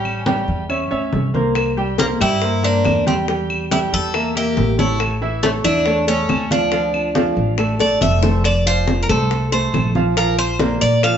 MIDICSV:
0, 0, Header, 1, 5, 480
1, 0, Start_track
1, 0, Tempo, 430416
1, 1734, Time_signature, 4, 2, 24, 8
1, 12462, End_track
2, 0, Start_track
2, 0, Title_t, "Grand piano"
2, 0, Program_c, 0, 0
2, 0, Note_on_c, 0, 55, 82
2, 0, Note_on_c, 0, 67, 84
2, 0, Note_on_c, 0, 79, 82
2, 205, Note_off_c, 0, 55, 0
2, 207, Note_off_c, 0, 67, 0
2, 210, Note_off_c, 0, 79, 0
2, 290, Note_on_c, 0, 55, 83
2, 293, Note_on_c, 0, 67, 83
2, 295, Note_on_c, 0, 79, 78
2, 685, Note_off_c, 0, 55, 0
2, 687, Note_off_c, 0, 67, 0
2, 688, Note_off_c, 0, 79, 0
2, 771, Note_on_c, 0, 61, 66
2, 774, Note_on_c, 0, 73, 68
2, 777, Note_on_c, 0, 76, 63
2, 969, Note_off_c, 0, 61, 0
2, 971, Note_off_c, 0, 73, 0
2, 973, Note_off_c, 0, 76, 0
2, 1009, Note_on_c, 0, 61, 77
2, 1012, Note_on_c, 0, 73, 81
2, 1015, Note_on_c, 0, 76, 74
2, 1405, Note_off_c, 0, 61, 0
2, 1406, Note_off_c, 0, 73, 0
2, 1408, Note_off_c, 0, 76, 0
2, 1492, Note_on_c, 0, 58, 75
2, 1494, Note_on_c, 0, 70, 69
2, 1498, Note_on_c, 0, 72, 70
2, 1887, Note_off_c, 0, 58, 0
2, 1888, Note_off_c, 0, 70, 0
2, 1890, Note_off_c, 0, 72, 0
2, 1973, Note_on_c, 0, 55, 78
2, 1977, Note_on_c, 0, 67, 81
2, 1980, Note_on_c, 0, 79, 83
2, 2171, Note_off_c, 0, 55, 0
2, 2173, Note_off_c, 0, 67, 0
2, 2175, Note_off_c, 0, 79, 0
2, 2217, Note_on_c, 0, 58, 70
2, 2220, Note_on_c, 0, 70, 72
2, 2223, Note_on_c, 0, 72, 69
2, 2413, Note_off_c, 0, 58, 0
2, 2414, Note_off_c, 0, 70, 0
2, 2416, Note_off_c, 0, 72, 0
2, 2458, Note_on_c, 0, 55, 85
2, 2460, Note_on_c, 0, 67, 74
2, 2465, Note_on_c, 0, 79, 86
2, 2653, Note_off_c, 0, 55, 0
2, 2654, Note_off_c, 0, 67, 0
2, 2657, Note_off_c, 0, 79, 0
2, 2699, Note_on_c, 0, 58, 64
2, 2702, Note_on_c, 0, 70, 67
2, 2704, Note_on_c, 0, 72, 68
2, 2894, Note_off_c, 0, 58, 0
2, 2896, Note_off_c, 0, 70, 0
2, 2897, Note_off_c, 0, 72, 0
2, 2936, Note_on_c, 0, 58, 78
2, 2939, Note_on_c, 0, 70, 79
2, 2941, Note_on_c, 0, 72, 76
2, 3329, Note_off_c, 0, 58, 0
2, 3331, Note_off_c, 0, 70, 0
2, 3332, Note_off_c, 0, 72, 0
2, 3417, Note_on_c, 0, 55, 85
2, 3420, Note_on_c, 0, 67, 82
2, 3424, Note_on_c, 0, 79, 81
2, 3613, Note_off_c, 0, 55, 0
2, 3614, Note_off_c, 0, 67, 0
2, 3617, Note_off_c, 0, 79, 0
2, 3660, Note_on_c, 0, 55, 81
2, 3661, Note_on_c, 0, 67, 81
2, 3666, Note_on_c, 0, 79, 81
2, 4051, Note_off_c, 0, 55, 0
2, 4052, Note_off_c, 0, 67, 0
2, 4055, Note_off_c, 0, 79, 0
2, 4139, Note_on_c, 0, 55, 86
2, 4141, Note_on_c, 0, 67, 83
2, 4145, Note_on_c, 0, 79, 88
2, 4531, Note_off_c, 0, 55, 0
2, 4532, Note_off_c, 0, 67, 0
2, 4535, Note_off_c, 0, 79, 0
2, 4618, Note_on_c, 0, 58, 71
2, 4621, Note_on_c, 0, 70, 66
2, 4625, Note_on_c, 0, 76, 62
2, 4813, Note_off_c, 0, 58, 0
2, 4815, Note_off_c, 0, 70, 0
2, 4817, Note_off_c, 0, 76, 0
2, 4854, Note_on_c, 0, 58, 79
2, 4856, Note_on_c, 0, 70, 81
2, 4861, Note_on_c, 0, 76, 74
2, 5248, Note_off_c, 0, 58, 0
2, 5249, Note_off_c, 0, 70, 0
2, 5252, Note_off_c, 0, 76, 0
2, 5335, Note_on_c, 0, 57, 76
2, 5338, Note_on_c, 0, 69, 73
2, 5341, Note_on_c, 0, 73, 74
2, 5729, Note_off_c, 0, 57, 0
2, 5731, Note_off_c, 0, 69, 0
2, 5733, Note_off_c, 0, 73, 0
2, 5815, Note_on_c, 0, 52, 80
2, 5819, Note_on_c, 0, 64, 86
2, 5823, Note_on_c, 0, 76, 80
2, 6012, Note_off_c, 0, 52, 0
2, 6015, Note_off_c, 0, 64, 0
2, 6017, Note_off_c, 0, 76, 0
2, 6052, Note_on_c, 0, 57, 72
2, 6057, Note_on_c, 0, 69, 75
2, 6060, Note_on_c, 0, 73, 73
2, 6250, Note_off_c, 0, 57, 0
2, 6253, Note_off_c, 0, 69, 0
2, 6255, Note_off_c, 0, 73, 0
2, 6293, Note_on_c, 0, 52, 79
2, 6295, Note_on_c, 0, 64, 80
2, 6298, Note_on_c, 0, 76, 83
2, 6491, Note_off_c, 0, 52, 0
2, 6492, Note_off_c, 0, 64, 0
2, 6494, Note_off_c, 0, 76, 0
2, 6534, Note_on_c, 0, 57, 62
2, 6538, Note_on_c, 0, 69, 73
2, 6541, Note_on_c, 0, 73, 69
2, 6732, Note_off_c, 0, 57, 0
2, 6734, Note_off_c, 0, 69, 0
2, 6736, Note_off_c, 0, 73, 0
2, 6773, Note_on_c, 0, 57, 81
2, 6776, Note_on_c, 0, 69, 80
2, 6780, Note_on_c, 0, 73, 75
2, 7168, Note_off_c, 0, 57, 0
2, 7170, Note_off_c, 0, 69, 0
2, 7172, Note_off_c, 0, 73, 0
2, 7254, Note_on_c, 0, 53, 80
2, 7257, Note_on_c, 0, 65, 86
2, 7262, Note_on_c, 0, 77, 85
2, 7452, Note_off_c, 0, 53, 0
2, 7454, Note_off_c, 0, 65, 0
2, 7456, Note_off_c, 0, 77, 0
2, 7493, Note_on_c, 0, 53, 83
2, 7495, Note_on_c, 0, 65, 87
2, 7499, Note_on_c, 0, 77, 82
2, 7888, Note_off_c, 0, 53, 0
2, 7889, Note_off_c, 0, 65, 0
2, 7892, Note_off_c, 0, 77, 0
2, 7972, Note_on_c, 0, 53, 79
2, 7975, Note_on_c, 0, 65, 76
2, 7979, Note_on_c, 0, 77, 79
2, 8368, Note_off_c, 0, 53, 0
2, 8369, Note_off_c, 0, 65, 0
2, 8372, Note_off_c, 0, 77, 0
2, 8454, Note_on_c, 0, 57, 73
2, 8457, Note_on_c, 0, 69, 65
2, 8461, Note_on_c, 0, 74, 72
2, 8652, Note_off_c, 0, 57, 0
2, 8654, Note_off_c, 0, 69, 0
2, 8656, Note_off_c, 0, 74, 0
2, 8697, Note_on_c, 0, 57, 76
2, 8701, Note_on_c, 0, 69, 75
2, 8704, Note_on_c, 0, 74, 77
2, 9091, Note_off_c, 0, 57, 0
2, 9093, Note_off_c, 0, 69, 0
2, 9095, Note_off_c, 0, 74, 0
2, 9176, Note_on_c, 0, 57, 70
2, 9180, Note_on_c, 0, 69, 71
2, 9183, Note_on_c, 0, 72, 72
2, 9374, Note_off_c, 0, 57, 0
2, 9376, Note_off_c, 0, 69, 0
2, 9378, Note_off_c, 0, 72, 0
2, 9658, Note_on_c, 0, 53, 79
2, 9660, Note_on_c, 0, 65, 81
2, 9664, Note_on_c, 0, 77, 82
2, 10052, Note_off_c, 0, 53, 0
2, 10053, Note_off_c, 0, 65, 0
2, 10055, Note_off_c, 0, 77, 0
2, 10142, Note_on_c, 0, 57, 75
2, 10144, Note_on_c, 0, 69, 73
2, 10147, Note_on_c, 0, 72, 72
2, 10534, Note_off_c, 0, 57, 0
2, 10535, Note_off_c, 0, 69, 0
2, 10537, Note_off_c, 0, 72, 0
2, 10619, Note_on_c, 0, 57, 80
2, 10622, Note_on_c, 0, 69, 78
2, 10625, Note_on_c, 0, 72, 77
2, 11012, Note_off_c, 0, 57, 0
2, 11014, Note_off_c, 0, 69, 0
2, 11016, Note_off_c, 0, 72, 0
2, 11097, Note_on_c, 0, 53, 84
2, 11100, Note_on_c, 0, 65, 83
2, 11104, Note_on_c, 0, 77, 86
2, 11295, Note_off_c, 0, 53, 0
2, 11296, Note_off_c, 0, 65, 0
2, 11299, Note_off_c, 0, 77, 0
2, 11340, Note_on_c, 0, 53, 80
2, 11343, Note_on_c, 0, 65, 82
2, 11347, Note_on_c, 0, 77, 90
2, 11733, Note_off_c, 0, 53, 0
2, 11735, Note_off_c, 0, 65, 0
2, 11737, Note_off_c, 0, 77, 0
2, 11821, Note_on_c, 0, 58, 73
2, 11824, Note_on_c, 0, 70, 68
2, 11827, Note_on_c, 0, 74, 71
2, 12214, Note_off_c, 0, 58, 0
2, 12216, Note_off_c, 0, 70, 0
2, 12218, Note_off_c, 0, 74, 0
2, 12301, Note_on_c, 0, 53, 82
2, 12304, Note_on_c, 0, 65, 77
2, 12307, Note_on_c, 0, 77, 80
2, 12462, Note_off_c, 0, 53, 0
2, 12462, Note_off_c, 0, 65, 0
2, 12462, Note_off_c, 0, 77, 0
2, 12462, End_track
3, 0, Start_track
3, 0, Title_t, "Cuban tres"
3, 0, Program_c, 1, 25
3, 0, Note_on_c, 1, 61, 78
3, 495, Note_off_c, 1, 61, 0
3, 2224, Note_on_c, 1, 58, 89
3, 2287, Note_off_c, 1, 58, 0
3, 2468, Note_on_c, 1, 64, 98
3, 2949, Note_on_c, 1, 62, 91
3, 2956, Note_off_c, 1, 64, 0
3, 3388, Note_off_c, 1, 62, 0
3, 3430, Note_on_c, 1, 60, 69
3, 3492, Note_off_c, 1, 60, 0
3, 4147, Note_on_c, 1, 64, 89
3, 4210, Note_off_c, 1, 64, 0
3, 4390, Note_on_c, 1, 69, 106
3, 4867, Note_off_c, 1, 69, 0
3, 4872, Note_on_c, 1, 67, 93
3, 5336, Note_off_c, 1, 67, 0
3, 5341, Note_on_c, 1, 64, 67
3, 5561, Note_off_c, 1, 64, 0
3, 6054, Note_on_c, 1, 57, 82
3, 6119, Note_off_c, 1, 57, 0
3, 6295, Note_on_c, 1, 62, 96
3, 6742, Note_off_c, 1, 62, 0
3, 6781, Note_on_c, 1, 61, 91
3, 7263, Note_off_c, 1, 61, 0
3, 7268, Note_on_c, 1, 62, 83
3, 8701, Note_on_c, 1, 74, 81
3, 8898, Note_off_c, 1, 62, 0
3, 8936, Note_off_c, 1, 74, 0
3, 8941, Note_on_c, 1, 76, 89
3, 9418, Note_off_c, 1, 76, 0
3, 9423, Note_on_c, 1, 74, 90
3, 9667, Note_off_c, 1, 74, 0
3, 9667, Note_on_c, 1, 72, 93
3, 10062, Note_off_c, 1, 72, 0
3, 10066, Note_on_c, 1, 70, 63
3, 10136, Note_off_c, 1, 70, 0
3, 10141, Note_on_c, 1, 69, 83
3, 10616, Note_off_c, 1, 69, 0
3, 10620, Note_on_c, 1, 72, 86
3, 11340, Note_off_c, 1, 72, 0
3, 11344, Note_on_c, 1, 70, 91
3, 11565, Note_off_c, 1, 70, 0
3, 11581, Note_on_c, 1, 72, 101
3, 12059, Note_on_c, 1, 74, 92
3, 12074, Note_off_c, 1, 72, 0
3, 12305, Note_off_c, 1, 74, 0
3, 12309, Note_on_c, 1, 77, 96
3, 12462, Note_off_c, 1, 77, 0
3, 12462, End_track
4, 0, Start_track
4, 0, Title_t, "Upright bass"
4, 0, Program_c, 2, 32
4, 0, Note_on_c, 2, 33, 91
4, 466, Note_off_c, 2, 33, 0
4, 533, Note_on_c, 2, 40, 94
4, 980, Note_off_c, 2, 40, 0
4, 1013, Note_on_c, 2, 38, 66
4, 1237, Note_off_c, 2, 38, 0
4, 1254, Note_on_c, 2, 36, 89
4, 2386, Note_off_c, 2, 36, 0
4, 2458, Note_on_c, 2, 43, 100
4, 3131, Note_off_c, 2, 43, 0
4, 3181, Note_on_c, 2, 40, 84
4, 4309, Note_off_c, 2, 40, 0
4, 4380, Note_on_c, 2, 40, 93
4, 5053, Note_off_c, 2, 40, 0
4, 5098, Note_on_c, 2, 33, 92
4, 6229, Note_off_c, 2, 33, 0
4, 6295, Note_on_c, 2, 40, 101
4, 6971, Note_off_c, 2, 40, 0
4, 7012, Note_on_c, 2, 38, 86
4, 8146, Note_off_c, 2, 38, 0
4, 8216, Note_on_c, 2, 33, 94
4, 8663, Note_off_c, 2, 33, 0
4, 8699, Note_on_c, 2, 31, 67
4, 8922, Note_off_c, 2, 31, 0
4, 8936, Note_on_c, 2, 29, 82
4, 10069, Note_off_c, 2, 29, 0
4, 10140, Note_on_c, 2, 36, 98
4, 10815, Note_off_c, 2, 36, 0
4, 10857, Note_on_c, 2, 34, 86
4, 11990, Note_off_c, 2, 34, 0
4, 12059, Note_on_c, 2, 46, 91
4, 12462, Note_off_c, 2, 46, 0
4, 12462, End_track
5, 0, Start_track
5, 0, Title_t, "Drums"
5, 54, Note_on_c, 9, 63, 37
5, 57, Note_on_c, 9, 75, 62
5, 166, Note_off_c, 9, 63, 0
5, 169, Note_off_c, 9, 75, 0
5, 292, Note_on_c, 9, 63, 95
5, 404, Note_off_c, 9, 63, 0
5, 536, Note_on_c, 9, 63, 35
5, 647, Note_off_c, 9, 63, 0
5, 775, Note_on_c, 9, 63, 36
5, 778, Note_on_c, 9, 75, 68
5, 886, Note_off_c, 9, 63, 0
5, 889, Note_off_c, 9, 75, 0
5, 1019, Note_on_c, 9, 63, 33
5, 1130, Note_off_c, 9, 63, 0
5, 1256, Note_on_c, 9, 63, 84
5, 1367, Note_off_c, 9, 63, 0
5, 1501, Note_on_c, 9, 63, 76
5, 1613, Note_off_c, 9, 63, 0
5, 1733, Note_on_c, 9, 60, 66
5, 1737, Note_on_c, 9, 63, 35
5, 1741, Note_on_c, 9, 75, 69
5, 1844, Note_off_c, 9, 60, 0
5, 1848, Note_off_c, 9, 63, 0
5, 1853, Note_off_c, 9, 75, 0
5, 1980, Note_on_c, 9, 63, 32
5, 2092, Note_off_c, 9, 63, 0
5, 2211, Note_on_c, 9, 60, 65
5, 2218, Note_on_c, 9, 63, 89
5, 2323, Note_off_c, 9, 60, 0
5, 2330, Note_off_c, 9, 63, 0
5, 2454, Note_on_c, 9, 60, 35
5, 2459, Note_on_c, 9, 63, 36
5, 2463, Note_on_c, 9, 75, 70
5, 2566, Note_off_c, 9, 60, 0
5, 2571, Note_off_c, 9, 63, 0
5, 2574, Note_off_c, 9, 75, 0
5, 2695, Note_on_c, 9, 60, 66
5, 2701, Note_on_c, 9, 63, 35
5, 2806, Note_off_c, 9, 60, 0
5, 2812, Note_off_c, 9, 63, 0
5, 2932, Note_on_c, 9, 60, 29
5, 2940, Note_on_c, 9, 63, 36
5, 3043, Note_off_c, 9, 60, 0
5, 3051, Note_off_c, 9, 63, 0
5, 3173, Note_on_c, 9, 60, 34
5, 3173, Note_on_c, 9, 61, 83
5, 3180, Note_on_c, 9, 63, 78
5, 3182, Note_on_c, 9, 75, 69
5, 3284, Note_off_c, 9, 60, 0
5, 3284, Note_off_c, 9, 61, 0
5, 3292, Note_off_c, 9, 63, 0
5, 3294, Note_off_c, 9, 75, 0
5, 3420, Note_on_c, 9, 60, 36
5, 3422, Note_on_c, 9, 63, 86
5, 3531, Note_off_c, 9, 60, 0
5, 3534, Note_off_c, 9, 63, 0
5, 3660, Note_on_c, 9, 60, 67
5, 3666, Note_on_c, 9, 63, 34
5, 3772, Note_off_c, 9, 60, 0
5, 3778, Note_off_c, 9, 63, 0
5, 3902, Note_on_c, 9, 63, 35
5, 3904, Note_on_c, 9, 75, 70
5, 4014, Note_off_c, 9, 63, 0
5, 4015, Note_off_c, 9, 75, 0
5, 4141, Note_on_c, 9, 60, 59
5, 4142, Note_on_c, 9, 63, 91
5, 4252, Note_off_c, 9, 60, 0
5, 4254, Note_off_c, 9, 63, 0
5, 4378, Note_on_c, 9, 60, 33
5, 4384, Note_on_c, 9, 63, 35
5, 4489, Note_off_c, 9, 60, 0
5, 4495, Note_off_c, 9, 63, 0
5, 4618, Note_on_c, 9, 60, 73
5, 4621, Note_on_c, 9, 63, 34
5, 4623, Note_on_c, 9, 75, 72
5, 4730, Note_off_c, 9, 60, 0
5, 4733, Note_off_c, 9, 63, 0
5, 4734, Note_off_c, 9, 75, 0
5, 4858, Note_on_c, 9, 60, 31
5, 4862, Note_on_c, 9, 63, 37
5, 4970, Note_off_c, 9, 60, 0
5, 4974, Note_off_c, 9, 63, 0
5, 5096, Note_on_c, 9, 60, 35
5, 5096, Note_on_c, 9, 61, 81
5, 5100, Note_on_c, 9, 63, 84
5, 5208, Note_off_c, 9, 60, 0
5, 5208, Note_off_c, 9, 61, 0
5, 5211, Note_off_c, 9, 63, 0
5, 5339, Note_on_c, 9, 60, 36
5, 5341, Note_on_c, 9, 63, 84
5, 5450, Note_off_c, 9, 60, 0
5, 5452, Note_off_c, 9, 63, 0
5, 5576, Note_on_c, 9, 60, 66
5, 5579, Note_on_c, 9, 75, 70
5, 5688, Note_off_c, 9, 60, 0
5, 5690, Note_off_c, 9, 75, 0
5, 5818, Note_on_c, 9, 63, 36
5, 5930, Note_off_c, 9, 63, 0
5, 6056, Note_on_c, 9, 60, 61
5, 6059, Note_on_c, 9, 63, 90
5, 6167, Note_off_c, 9, 60, 0
5, 6170, Note_off_c, 9, 63, 0
5, 6292, Note_on_c, 9, 60, 37
5, 6298, Note_on_c, 9, 75, 65
5, 6301, Note_on_c, 9, 63, 32
5, 6404, Note_off_c, 9, 60, 0
5, 6410, Note_off_c, 9, 75, 0
5, 6412, Note_off_c, 9, 63, 0
5, 6531, Note_on_c, 9, 60, 70
5, 6543, Note_on_c, 9, 63, 34
5, 6642, Note_off_c, 9, 60, 0
5, 6654, Note_off_c, 9, 63, 0
5, 6769, Note_on_c, 9, 60, 32
5, 6782, Note_on_c, 9, 63, 35
5, 6881, Note_off_c, 9, 60, 0
5, 6894, Note_off_c, 9, 63, 0
5, 7014, Note_on_c, 9, 60, 34
5, 7014, Note_on_c, 9, 61, 85
5, 7018, Note_on_c, 9, 63, 86
5, 7020, Note_on_c, 9, 75, 68
5, 7125, Note_off_c, 9, 60, 0
5, 7125, Note_off_c, 9, 61, 0
5, 7130, Note_off_c, 9, 63, 0
5, 7132, Note_off_c, 9, 75, 0
5, 7256, Note_on_c, 9, 60, 38
5, 7258, Note_on_c, 9, 63, 87
5, 7367, Note_off_c, 9, 60, 0
5, 7370, Note_off_c, 9, 63, 0
5, 7491, Note_on_c, 9, 60, 66
5, 7496, Note_on_c, 9, 63, 35
5, 7602, Note_off_c, 9, 60, 0
5, 7608, Note_off_c, 9, 63, 0
5, 7736, Note_on_c, 9, 63, 38
5, 7739, Note_on_c, 9, 75, 66
5, 7847, Note_off_c, 9, 63, 0
5, 7851, Note_off_c, 9, 75, 0
5, 7975, Note_on_c, 9, 60, 66
5, 7976, Note_on_c, 9, 63, 93
5, 8087, Note_off_c, 9, 60, 0
5, 8087, Note_off_c, 9, 63, 0
5, 8214, Note_on_c, 9, 60, 34
5, 8217, Note_on_c, 9, 63, 36
5, 8325, Note_off_c, 9, 60, 0
5, 8329, Note_off_c, 9, 63, 0
5, 8452, Note_on_c, 9, 60, 73
5, 8456, Note_on_c, 9, 63, 34
5, 8462, Note_on_c, 9, 75, 64
5, 8563, Note_off_c, 9, 60, 0
5, 8568, Note_off_c, 9, 63, 0
5, 8573, Note_off_c, 9, 75, 0
5, 8692, Note_on_c, 9, 60, 66
5, 8697, Note_on_c, 9, 63, 35
5, 8804, Note_off_c, 9, 60, 0
5, 8809, Note_off_c, 9, 63, 0
5, 8933, Note_on_c, 9, 61, 81
5, 8939, Note_on_c, 9, 63, 84
5, 9044, Note_off_c, 9, 61, 0
5, 9050, Note_off_c, 9, 63, 0
5, 9174, Note_on_c, 9, 61, 106
5, 9181, Note_on_c, 9, 63, 83
5, 9285, Note_off_c, 9, 61, 0
5, 9293, Note_off_c, 9, 63, 0
5, 9416, Note_on_c, 9, 60, 62
5, 9422, Note_on_c, 9, 63, 35
5, 9422, Note_on_c, 9, 75, 69
5, 9528, Note_off_c, 9, 60, 0
5, 9533, Note_off_c, 9, 75, 0
5, 9534, Note_off_c, 9, 63, 0
5, 9664, Note_on_c, 9, 63, 34
5, 9776, Note_off_c, 9, 63, 0
5, 9897, Note_on_c, 9, 60, 65
5, 9898, Note_on_c, 9, 63, 91
5, 10009, Note_off_c, 9, 60, 0
5, 10010, Note_off_c, 9, 63, 0
5, 10139, Note_on_c, 9, 60, 38
5, 10141, Note_on_c, 9, 63, 38
5, 10141, Note_on_c, 9, 64, 85
5, 10142, Note_on_c, 9, 75, 66
5, 10251, Note_off_c, 9, 60, 0
5, 10253, Note_off_c, 9, 63, 0
5, 10253, Note_off_c, 9, 64, 0
5, 10253, Note_off_c, 9, 75, 0
5, 10382, Note_on_c, 9, 60, 71
5, 10385, Note_on_c, 9, 63, 37
5, 10494, Note_off_c, 9, 60, 0
5, 10497, Note_off_c, 9, 63, 0
5, 10623, Note_on_c, 9, 63, 35
5, 10734, Note_off_c, 9, 63, 0
5, 10860, Note_on_c, 9, 63, 83
5, 10862, Note_on_c, 9, 75, 68
5, 10864, Note_on_c, 9, 60, 36
5, 10864, Note_on_c, 9, 61, 84
5, 10972, Note_off_c, 9, 63, 0
5, 10973, Note_off_c, 9, 75, 0
5, 10975, Note_off_c, 9, 60, 0
5, 10975, Note_off_c, 9, 61, 0
5, 11099, Note_on_c, 9, 63, 82
5, 11103, Note_on_c, 9, 60, 33
5, 11210, Note_off_c, 9, 63, 0
5, 11214, Note_off_c, 9, 60, 0
5, 11341, Note_on_c, 9, 60, 70
5, 11343, Note_on_c, 9, 63, 36
5, 11452, Note_off_c, 9, 60, 0
5, 11454, Note_off_c, 9, 63, 0
5, 11580, Note_on_c, 9, 63, 37
5, 11584, Note_on_c, 9, 75, 71
5, 11691, Note_off_c, 9, 63, 0
5, 11695, Note_off_c, 9, 75, 0
5, 11815, Note_on_c, 9, 63, 99
5, 11823, Note_on_c, 9, 60, 61
5, 11927, Note_off_c, 9, 63, 0
5, 11935, Note_off_c, 9, 60, 0
5, 12056, Note_on_c, 9, 63, 35
5, 12062, Note_on_c, 9, 60, 34
5, 12168, Note_off_c, 9, 63, 0
5, 12174, Note_off_c, 9, 60, 0
5, 12300, Note_on_c, 9, 63, 36
5, 12303, Note_on_c, 9, 60, 69
5, 12303, Note_on_c, 9, 75, 66
5, 12411, Note_off_c, 9, 63, 0
5, 12414, Note_off_c, 9, 75, 0
5, 12415, Note_off_c, 9, 60, 0
5, 12462, End_track
0, 0, End_of_file